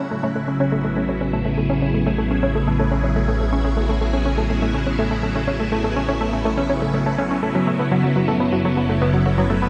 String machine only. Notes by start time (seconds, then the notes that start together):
Already playing: C#3 F#3 C#4 E4 F#4
0.52 B3
1.37 G#4
8.52 A4